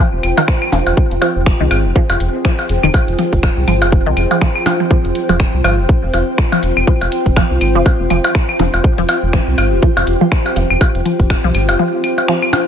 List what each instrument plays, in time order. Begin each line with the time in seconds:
Already playing: synth texture C4 C5, ambient pad F4 C5 G5
0.13 analog synth bass F1
0.23 analog synth bass F1, closed hi-hat, claves
0.37 synth arpeggio sound D#3, percussion blips
0.48 finger snap, kick
0.62 claves
0.72 analog synth bass F1, synth arpeggio sound F3, closed hi-hat, percussion blips
0.87 analog synth bass F1, percussion blips
0.97 synth texture G#4, kick
1.11 analog synth bass F1, closed hi-hat
1.22 synth arpeggio sound F3, closed hi-hat, percussion blips
1.36 analog synth bass F1
1.46 finger snap, kick
1.60 analog synth bass C2, synth arpeggio sound D#3
1.71 analog synth bass G#1, closed hi-hat, claves, percussion blips
1.85 analog synth bass F1
1.96 synth arpeggio sound F3, kick
2.10 analog synth bass F1, percussion blips
2.20 analog synth bass F1, closed hi-hat
2.45 synth arpeggio sound F3, finger snap, kick
2.59 percussion blips
2.69 analog synth bass F1, closed hi-hat
2.83 analog synth bass F1, synth arpeggio sound D#3, claves
2.94 kick, percussion blips
3.08 analog synth bass F1, closed hi-hat
3.19 synth arpeggio sound F3, closed hi-hat
3.33 analog synth bass F1, kick, closed hi-hat
3.43 finger snap, kick, percussion blips
3.57 analog synth bass C2
3.68 analog synth bass G#1, synth arpeggio sound F3, closed hi-hat, claves
3.82 analog synth bass F1, percussion blips
3.92 kick
4.06 analog synth bass C2, synth arpeggio sound D#3
4.17 analog synth bass F1, closed hi-hat, claves
4.31 synth arpeggio sound F3, percussion blips
4.41 synth arpeggio sound F3, finger snap, kick
4.56 claves
4.66 synth arpeggio sound F3, closed hi-hat, percussion blips
4.80 synth arpeggio sound F3
4.91 synth arpeggio sound F3, synth texture C5, kick
5.05 analog synth bass F1, closed hi-hat
5.15 closed hi-hat
5.29 analog synth bass F1, synth arpeggio sound F3, percussion blips
5.40 finger snap, kick
5.54 analog synth bass C2
5.64 analog synth bass G#1, synth arpeggio sound F3, closed hi-hat, claves, percussion blips
5.79 analog synth bass F1
5.89 kick
6.03 analog synth bass F1
6.14 analog synth bass F1, synth arpeggio sound F3, closed hi-hat, percussion blips
6.38 finger snap, kick
6.52 synth arpeggio sound F3, percussion blips
6.63 analog synth bass F1, closed hi-hat
6.77 analog synth bass F1, claves
6.87 synth arpeggio sound F3, kick
7.01 analog synth bass F1, closed hi-hat, percussion blips
7.12 closed hi-hat
7.26 analog synth bass F1, kick, closed hi-hat
7.36 synth arpeggio sound F3, finger snap, kick, percussion blips
7.51 analog synth bass C2
7.61 analog synth bass G#1, closed hi-hat, claves
7.75 analog synth bass F1, synth arpeggio sound F3
7.86 kick, percussion blips
8.00 analog synth bass F1
8.10 analog synth bass F1, synth arpeggio sound F3, closed hi-hat, claves
8.24 percussion blips
8.35 finger snap, kick
8.49 claves
8.59 analog synth bass F1, synth arpeggio sound F3, closed hi-hat, percussion blips
8.74 analog synth bass F1, percussion blips
8.84 synth texture G4, kick
8.98 analog synth bass F1, synth arpeggio sound F3, closed hi-hat
9.09 closed hi-hat, percussion blips
9.23 analog synth bass F1
9.33 synth arpeggio sound F3, finger snap, kick
9.48 analog synth bass C2
9.58 analog synth bass G#1, closed hi-hat, claves, percussion blips
9.72 analog synth bass F1
9.82 synth arpeggio sound F3, kick
9.97 analog synth bass F1, percussion blips
10.07 analog synth bass F1, closed hi-hat
10.21 synth arpeggio sound F3
10.32 finger snap, kick
10.46 percussion blips
10.56 analog synth bass F1, synth arpeggio sound F3, closed hi-hat
10.70 analog synth bass F1, claves
10.81 kick, percussion blips
10.95 analog synth bass F1, closed hi-hat
11.05 synth arpeggio sound F3, closed hi-hat
11.20 analog synth bass F1, kick, closed hi-hat
11.30 finger snap, kick, percussion blips
11.44 analog synth bass C2, synth arpeggio sound F3
11.55 analog synth bass G#1, closed hi-hat, claves
11.69 analog synth bass F1, percussion blips
11.79 synth arpeggio sound F3
12.04 closed hi-hat, claves
12.18 percussion blips
12.28 synth arpeggio sound F3, finger snap
12.42 claves
12.53 closed hi-hat, percussion blips